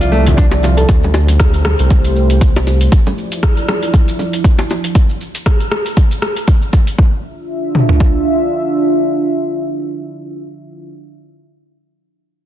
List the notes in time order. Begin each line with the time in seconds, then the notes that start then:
Already playing: C2 F3 D5 E5
0.01 F4, closed hi-hat, cabasa
0.12 A3, low bongo, cabasa
0.27 closed hi-hat, muted conga, high conga, low conga, cabasa
0.37 D4, kick, closed hi-hat, cabasa
0.51 high bongo, cabasa
0.63 F4, high bongo, muted conga, cabasa
0.77 A4, closed hi-hat, cabasa
0.88 D2 A3 G4 C5, kick, closed hi-hat, high bongo, cabasa
1.03 low bongo, cabasa
1.14 high bongo, cabasa
1.28 closed hi-hat, low bongo, cabasa
1.40 kick, cross-stick, closed hi-hat, cabasa
1.54 closed hi-hat, cabasa
1.65 cross-stick, low bongo, cabasa
1.79 C2, closed hi-hat, cabasa
1.90 kick, closed hi-hat, low bongo, cabasa
2.05 closed hi-hat, cabasa
2.16 cabasa
2.30 closed hi-hat, cabasa
2.41 kick, closed hi-hat, cabasa
2.56 high bongo, cabasa
2.67 high bongo, cabasa
2.81 closed hi-hat, cabasa
2.92 F3 E4 D5, kick, closed hi-hat, cabasa
3.07 low bongo, cabasa
3.18 cabasa
3.32 closed hi-hat, cabasa
3.43 kick, cross-stick, closed hi-hat, cabasa
3.57 closed hi-hat, cabasa
3.69 cross-stick, low bongo, cabasa
3.83 closed hi-hat, cabasa
3.94 kick, closed hi-hat, low bongo, cabasa
4.08 closed hi-hat, cabasa
4.19 low bongo, cabasa
4.33 closed hi-hat, cabasa
4.44 kick, closed hi-hat, cabasa
4.59 high bongo, cabasa
4.70 high bongo, cabasa
4.84 closed hi-hat, cabasa
4.95 kick, closed hi-hat, cabasa
5.10 cabasa
5.21 cabasa
5.35 closed hi-hat, cabasa
5.46 kick, cross-stick, closed hi-hat, cabasa
5.60 closed hi-hat, cabasa
5.72 cross-stick, cabasa
5.86 closed hi-hat, cabasa
5.97 kick, closed hi-hat, cabasa
6.11 closed hi-hat, cabasa
6.22 cross-stick, cabasa
6.37 closed hi-hat, cabasa
6.48 kick, closed hi-hat, cabasa
6.62 cabasa
6.73 kick, cabasa
6.87 closed hi-hat, cabasa
6.99 D4 F4 E5, kick
7.75 mid tom
7.89 floor tom
8.00 kick